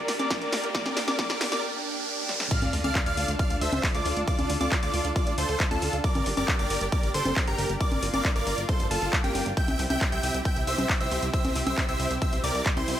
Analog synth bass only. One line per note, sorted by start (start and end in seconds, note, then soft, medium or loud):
0.09 0.16 G1 loud
0.20 0.27 G1 medium
0.42 0.49 G1 medium
0.53 0.60 G1 medium
0.64 0.71 G1 medium
0.86 0.93 G1 medium
0.97 1.04 G1 loud
1.08 1.15 G1 medium
1.30 1.37 G1 medium
1.41 1.48 G1 medium
1.52 1.59 G1 medium
2.62 2.69 D2 medium
2.73 2.80 D2 loud
2.84 2.91 D2 medium
3.06 3.13 D2 medium
3.17 3.24 D2 loud
3.28 3.35 D2 loud
3.50 3.57 D2 medium
3.61 3.68 D2 loud
3.72 3.79 D2 loud
3.94 4.02 D2 medium
4.06 4.13 D2 loud
4.17 4.24 D2 medium
4.39 4.46 D2 medium
4.50 4.57 D2 loud
4.61 4.68 D2 medium
4.83 4.90 D2 medium
4.94 5.01 D2 loud
5.05 5.12 D2 medium
5.27 5.34 D2 medium
5.38 5.45 D2 loud
5.49 5.56 D2 medium
5.71 5.78 D2 medium
5.82 5.89 D2 loud
5.93 6.00 D2 medium
6.15 6.22 G1 medium
6.26 6.33 G1 loud
6.37 6.44 G1 medium
6.59 6.66 G1 medium
6.70 6.77 G1 medium
6.81 6.88 G1 medium
7.03 7.10 G1 medium
7.14 7.21 G1 medium
7.25 7.32 G1 loud
7.48 7.55 G1 medium
7.59 7.66 G1 loud
7.70 7.77 G1 medium
7.92 7.99 G1 medium
8.03 8.10 G1 loud
8.14 8.21 G1 medium
8.36 8.43 G1 medium
8.47 8.54 G1 loud
8.58 8.65 G1 medium
8.80 8.87 G1 medium
8.91 8.98 G1 medium
9.02 9.09 G1 medium
9.24 9.31 G1 medium
9.35 9.42 G1 loud
9.46 9.53 G1 loud
9.68 9.75 C2 medium
9.79 9.86 C2 loud
9.90 9.97 C2 medium
10.12 10.19 C2 medium
10.23 10.30 C2 medium
10.34 10.41 C2 medium
10.56 10.63 C2 medium
10.67 10.74 C2 loud
10.78 10.85 C2 medium
11.00 11.07 C2 medium
11.12 11.19 C2 loud
11.23 11.30 C2 medium
11.45 11.52 C2 medium
11.56 11.63 C2 loud
11.67 11.74 C2 medium
11.89 11.96 C2 medium
12.00 12.07 C2 loud
12.11 12.18 C2 medium
12.33 12.40 C2 medium
12.44 12.51 C2 loud
12.55 12.62 C2 medium
12.77 12.84 C2 medium
12.88 12.95 C2 loud